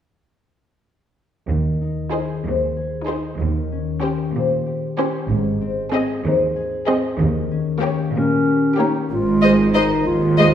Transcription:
1.49 cello section D#2, double bass section D#2, harp D#3
1.81 harp D#4
2.11 viola section D#4, violin section G#4 C5, harp G#4
2.45 cello section D#2, harp C5
2.77 harp G#4
3.08 viola section D#4, harp D#4, violin section G#4 C5
3.40 cello section D#2, double bass section D#2, harp D#3
3.72 harp C#4
4.03 viola section C#4, violin section G4 C5, harp G4
4.34 cello section A#2, harp C5
4.66 harp G4
4.98 viola section C#4, harp C#4, violin section G4 C5
5.30 double bass section G#1, cello section G#2, harp G#2
5.61 harp C4
5.92 viola section C4, violin section G#4 D#5, harp G#4
6.24 cello section D#2, harp C5
6.56 harp G#4
6.87 viola section C4, harp C4, violin section G#4 D#5
7.19 cello section D#2, double bass section D#2, harp D#3
7.51 harp C#4
7.82 viola section A#3, violin section G4 C#5, harp G4
8.14 cello section A#2, clarinet C#4, harp A#4
8.47 harp G4
8.78 viola section A#3, harp C#4, clarinet D#4, violin section G4 C#5
9.11 double bass section G#1, cello section G#2, harp G#2, clarinet F4
9.42 viola section G#3, harp G#4, violin section C5 D#5
9.73 viola section G#3, clarinet D#4, harp A#4, violin section C5 D#5
10.06 cello section D#2, double bass section D#2, clarinet F4, harp G#4
10.38 viola section G#3, harp C5, violin section C5 D#5

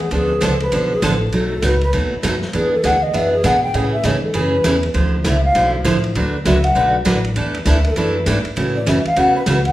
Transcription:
Already playing: upright bass E2, ocarina G#4
0.11 upright bass D2, steel-string acoustic guitar D3 F3 B3 D4 A4, ocarina G#4, ride
0.41 upright bass C#2, steel-string acoustic guitar D3 F3 B3 D4 A4, ocarina A4, snare, hi-hat pedal, ride
0.60 ocarina B4, ride
0.72 upright bass B1, steel-string acoustic guitar D3 F3 B3 D4 A4, ride
0.92 ocarina G#4
1.02 upright bass A1, steel-string acoustic guitar D3 F3 B3 D4 A4, ocarina A4, snare, hi-hat pedal, ride
1.32 upright bass B1, steel-string acoustic guitar B2 F#3 A3 D#4 F#4, ocarina A4, ride
1.62 upright bass C#2, steel-string acoustic guitar B2 F#3 A3 D#4 F#4, ocarina B4, snare, hi-hat pedal, ride
1.81 ocarina B4, ride
1.93 upright bass D#2, steel-string acoustic guitar B2 F#3 A3 D#4 F#4, ride
2.12 muted upright bass stroke
2.23 upright bass F#2, steel-string acoustic guitar B2 F#3 A3 D#4 F#4, snare, hi-hat pedal, ride
2.42 snare
2.53 upright bass E2, steel-string acoustic guitar E3 B3 D4 G#4, ocarina G#4, ride
2.73 ocarina A4
2.84 upright bass D2, steel-string acoustic guitar E3 B3 D4 G#4, ocarina F#5, snare, hi-hat pedal, ride
3.02 ocarina D#5
3.14 upright bass F#2, steel-string acoustic guitar E3 B3 D4 G#4, ocarina E5, ride
3.33 ocarina G#4
3.44 upright bass B2, steel-string acoustic guitar E3 B3 D4 G#4, ocarina F#5, snare, hi-hat pedal, ride
3.63 ocarina G5
3.74 upright bass A2, steel-string acoustic guitar C#3 E3 A3 C#4 G#4, ocarina G#4, ride
3.92 ocarina E5
4.03 upright bass G#2, steel-string acoustic guitar C#3 E3 A3 C#4 G#4, ocarina C#5, snare, hi-hat pedal, ride
4.23 ocarina A4
4.34 upright bass F#2, steel-string acoustic guitar C#3 E3 A3 C#4 G#4, ocarina B4, ride
4.64 upright bass E2, steel-string acoustic guitar C#3 E3 A3 C#4 G#4, snare, hi-hat pedal, ride
4.83 ride
4.94 upright bass D2, steel-string acoustic guitar D3 F3 A3 E4, ride
5.24 upright bass C#2, steel-string acoustic guitar D3 F3 A3 E4, ocarina E5, snare, hi-hat pedal, ride
5.44 ocarina F5
5.55 upright bass B1, steel-string acoustic guitar D3 F3 A3 E4, ride
5.84 upright bass A1, steel-string acoustic guitar D3 F3 A3 E4, snare, hi-hat pedal, ride
6.04 ride
6.15 upright bass D2, steel-string acoustic guitar D3 F#3 A3 D4 F#4 B4, ride
6.45 upright bass C#2, steel-string acoustic guitar D3 F#3 A3 D4 F#4 B4, ocarina E5, snare, hi-hat pedal, ride
6.64 ocarina F#5, ride
6.75 upright bass B1, steel-string acoustic guitar D3 F#3 A3 D4 F#4 B4
7.05 upright bass A1, steel-string acoustic guitar D3 F#3 A3 D4 F#4 B4, snare, hi-hat pedal, ride
7.24 ride
7.36 upright bass E2, steel-string acoustic guitar E3 A3 D4 E4 A4, ride
7.54 ride
7.65 upright bass D2, steel-string acoustic guitar E3 A3 D4 E4 A4, ocarina E5, snare, hi-hat pedal, ride
7.84 ocarina A#4, ride
7.90 ocarina A4
7.96 upright bass F#2, steel-string acoustic guitar E3 A3 D4 E4 A4, ride
8.26 upright bass G#2, steel-string acoustic guitar E3 A3 D4 E4 A4, snare, hi-hat pedal, ride
8.45 muted upright bass stroke, ride
8.56 upright bass A2, steel-string acoustic guitar C#3 E3 A3 C#4 F#4, ride
8.75 ocarina D5
8.86 upright bass F#2, steel-string acoustic guitar C#3 E3 A3 C#4 F#4, ocarina E5, snare, hi-hat pedal, ride
9.05 ocarina F5, muted upright bass stroke, ride
9.16 upright bass E2, steel-string acoustic guitar C#3 E3 A3 C#4 F#4, ocarina F#5, ride
9.35 ocarina B4
9.46 upright bass C#2, steel-string acoustic guitar C#3 E3 A3 C#4 F#4, snare, hi-hat pedal, ride
9.65 ocarina F#5, ride

